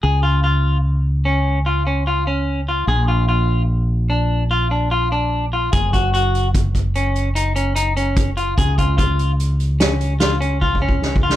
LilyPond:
<<
  \new Staff \with { instrumentName = "Clean electric guitar" } { \time 7/4 \key des \major \tempo 4 = 148 aes'8 f'8 f'4 r4 des'4 f'8 des'8 f'8 des'4 f'8 | aes'8 f'8 f'4 r4 d'4 f'8 d'8 f'8 d'4 f'8 | aes'8 ges'8 ges'4 r4 des'4 ees'8 des'8 ees'8 des'4 f'8 | aes'8 f'8 f'4 r4 des'4 f'8 des'8 f'8 des'4 f'8 | }
  \new Staff \with { instrumentName = "Fretless electric bass" } { \clef bass \time 7/4 \key des \major des,1.~ des,4 | bes,,1.~ bes,,4 | ges,,1.~ ges,,4 | des,1.~ des,4 | }
  \new DrumStaff \with { instrumentName = "Drums" } \drummode { \time 7/4 r4 r4 r4 r4 r4 r4 r4 | r4 r4 r4 r4 r4 r4 r4 | <hh bd>8 <hh bd>8 hh8 hh8 <hh bd>8 <hh bd>8 hh8 hh8 hh8 hh8 hh8 hh8 <hh bd>8 hh8 | <hh bd>8 <hh bd>8 <hh bd>8 hh8 hh8 hh8 <hh sn>8 hh8 <hh sn>8 hh8 \tuplet 3/2 { bd8 bd8 bd8 sn8 bd8 sn8 } | }
>>